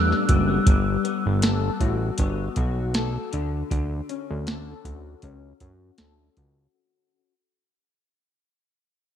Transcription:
Already playing: analog synth bass E2, clean electric guitar A2 G3 B3, tine electric piano G3 B3 D4 A4 B4, glockenspiel E6
0.10 clean electric guitar D4, snare
0.28 analog synth bass F#1, clean electric guitar G3, kick, closed hi-hat
0.49 clean electric guitar B3
0.66 analog synth bass G1, clean electric guitar G3, kick, closed hi-hat
1.04 clean electric guitar B3, closed hi-hat
1.26 analog synth bass G1
1.42 clean electric guitar A4, snare, closed hi-hat
1.80 analog synth bass A1, clean electric guitar F#4, kick, closed hi-hat
2.18 analog synth bass G1, clean electric guitar B3, kick, closed hi-hat
2.56 analog synth bass B1, clean electric guitar F#4, kick, closed hi-hat
2.94 clean electric guitar A4, snare, closed hi-hat
3.32 analog synth bass D2, clean electric guitar D3, closed hi-hat
3.70 analog synth bass D2, clean electric guitar D3, kick, closed hi-hat
4.09 clean electric guitar C#4, closed hi-hat
4.30 analog synth bass D2
4.47 clean electric guitar A4, snare, closed hi-hat
4.85 analog synth bass D2, clean electric guitar F#4, kick, closed hi-hat
5.22 analog synth bass C#2, clean electric guitar C#4, kick, closed hi-hat
5.60 analog synth bass F#2, clean electric guitar F#4, kick, closed hi-hat
5.98 analog synth bass D2, clean electric guitar A4, snare, closed hi-hat
6.37 analog synth bass C#2, clean electric guitar F#4, kick, closed hi-hat

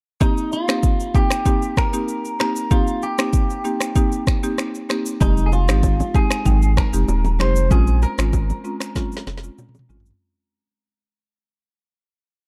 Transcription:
0.21 marimba A#3 C4 D#4 G4, clean electric guitar D#4, kick, shaker
0.37 shaker
0.52 clean electric guitar F4, shaker
0.68 marimba A#3 C4 D#4 G4, finger snap, cross-stick, shaker
0.83 kick, shaker
1.00 shaker
1.14 marimba A#3 C4 D#4 G4, clean electric guitar G4, kick, shaker
1.30 finger snap, cross-stick, shaker
1.46 marimba A#3 C4 D#4 G4, kick, shaker
1.62 shaker
1.77 clean electric guitar A#4, finger snap, kick, cross-stick, shaker
1.93 marimba A#3 C4 D#4 G4, shaker
2.08 shaker
2.25 shaker
2.39 marimba A#3 C4 D#4 G4, clean electric guitar A#4, finger snap, cross-stick, shaker
2.56 shaker
2.71 marimba A#3 C4 D#4 G4, clean electric guitar F4, kick, shaker
2.87 shaker
3.02 clean electric guitar G4, shaker
3.18 marimba A#3 C4 D#4 G4, finger snap, cross-stick, shaker
3.33 kick, shaker
3.50 shaker
3.64 marimba A#3 C4 D#4 G4, shaker
3.80 finger snap, cross-stick, shaker
3.96 marimba A#3 C4 D#4 G4, kick, shaker
4.12 shaker
4.27 finger snap, kick, cross-stick, shaker
4.43 marimba A#3 C4 D#4 G4, shaker
4.58 finger snap, cross-stick, shaker
4.75 shaker
4.89 marimba A#3 C4 D#4 G4, finger snap, cross-stick, shaker
5.06 shaker
5.21 sub bass F1, marimba G#3 C4 D#4 G4, clean electric guitar D#4, kick, low conga, shaker
5.37 shaker
5.46 clean electric guitar G#4
5.52 clean electric guitar F4, high bongo, shaker
5.68 sub bass G#1, marimba G#3 C4 D#4 G4, finger snap, cross-stick, shaker
5.83 kick, high bongo, shaker
6.00 low bongo, shaker
6.14 marimba G#3 C4 D#4 G4, clean electric guitar G#4, kick, shaker
6.31 finger snap, cross-stick, shaker
6.45 sub bass G#1, marimba G#3 C4 D#4 G5, kick, low conga, shaker
6.62 shaker
6.77 clean electric guitar A#4, finger snap, kick, cross-stick, low bongo, shaker
6.93 sub bass F1, marimba G#3 C4 D#4 G4, shaker
7.08 sub bass D#1, high bongo, shaker
7.25 low bongo, shaker
7.39 sub bass F1, marimba G#3 C4 D#4 G4, clean electric guitar C5, finger snap, cross-stick, low conga, shaker
7.56 shaker
7.71 sub bass A#1, marimba G#3 C4 C#4 F4, clean electric guitar G#4, kick, low conga, shaker
7.87 shaker
8.02 clean electric guitar A#4, high bongo, shaker
8.18 sub bass G#1, marimba G#3 C4 C#4 F4, finger snap, cross-stick, shaker
8.33 kick, high bongo, shaker
8.50 low bongo, shaker
8.64 marimba G#3 C4 C#4 F4, shaker
8.80 finger snap, cross-stick, shaker
8.96 marimba G#3 C4 C#4 F4, kick, snare, low conga, shaker
9.12 shaker
9.17 snare
9.27 sub bass F1, snare, low bongo, shaker
9.38 snare
9.43 marimba G#3 C4 C#4 F4, shaker
9.58 mid tom, high bongo, shaker
9.69 mid tom
9.75 low bongo, shaker
9.79 mid tom
9.89 sub bass G#1, marimba G#3 C4 C#4 F4, low conga, shaker
10.00 floor tom
10.06 shaker
10.11 floor tom

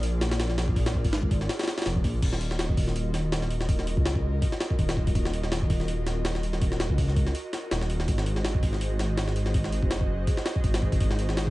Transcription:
Already playing: detuned saw bass A#1, analog synth pad F4 G#4 A#4 D5
0.03 open hi-hat
0.21 snare, open hi-hat
0.31 snare, open hi-hat
0.40 snare, open hi-hat
0.50 snare
0.58 snare, open hi-hat
0.68 kick
0.76 kick, open hi-hat
0.86 snare, open hi-hat
0.94 kick
1.04 detuned saw bass G#1, kick, open hi-hat
1.13 snare, open hi-hat
1.23 kick
1.31 kick, open hi-hat
1.41 snare
1.49 snare, open hi-hat
1.59 snare, open hi-hat
1.63 snare, open hi-hat
1.68 snare, open hi-hat
1.78 snare, open hi-hat
1.82 snare, open hi-hat
1.86 detuned saw bass F1, snare, open hi-hat
1.96 kick
2.04 detuned saw bass A#1, kick, open hi-hat
2.22 detuned saw bass D#1, analog synth pad F4 F#4 A#4 D#5, kick, open hi-hat, crash
2.33 snare
2.41 open hi-hat
2.51 snare
2.59 snare, open hi-hat
2.69 kick
2.77 kick, open hi-hat
2.87 snare
2.96 open hi-hat
3.14 snare, open hi-hat
3.32 snare, open hi-hat
3.42 snare
3.51 open hi-hat
3.61 snare
3.69 kick, open hi-hat
3.79 snare
3.87 open hi-hat
3.97 detuned saw bass C#2, kick
4.06 snare, open hi-hat
4.15 kick
4.42 kick, open hi-hat
4.52 snare
4.60 snare, open hi-hat
4.70 kick
4.79 detuned saw bass D#1, kick, open hi-hat
4.89 snare, open hi-hat
4.97 kick
5.07 kick, open hi-hat
5.15 detuned saw bass D#1, kick, open hi-hat
5.25 snare
5.34 open hi-hat
5.44 snare
5.52 snare, open hi-hat
5.62 kick
5.70 kick, open hi-hat
5.80 snare
5.88 open hi-hat
6.07 snare, open hi-hat
6.25 snare, open hi-hat
6.35 snare
6.43 open hi-hat
6.53 snare
6.62 kick, open hi-hat
6.72 snare
6.80 snare, open hi-hat
6.90 detuned saw bass C#2, kick
6.98 kick, open hi-hat
7.08 snare
7.16 kick, open hi-hat
7.27 snare
7.35 open hi-hat
7.53 snare, open hi-hat
7.71 detuned saw bass D#1, snare, open hi-hat
7.81 snare
7.90 open hi-hat
8.00 snare
8.08 detuned saw bass G#1, analog synth pad G#4 C5 D#5, kick, open hi-hat
8.18 snare
8.26 open hi-hat
8.36 snare
8.45 snare, open hi-hat
8.55 kick
8.63 kick, open hi-hat
8.73 snare
8.81 open hi-hat
8.99 snare, open hi-hat
9.18 snare, open hi-hat
9.28 snare
9.36 open hi-hat
9.46 snare
9.54 kick, open hi-hat
9.64 snare
9.72 open hi-hat
9.83 detuned saw bass F#1, kick
9.91 snare, open hi-hat
10.01 kick
10.27 kick, open hi-hat
10.37 snare
10.46 snare, open hi-hat
10.56 kick
10.64 detuned saw bass G#1, kick, open hi-hat
10.74 snare, open hi-hat
10.82 kick
10.92 kick, open hi-hat
11.00 detuned saw bass G#1, kick, open hi-hat
11.11 snare
11.19 open hi-hat
11.29 snare
11.37 snare, open hi-hat

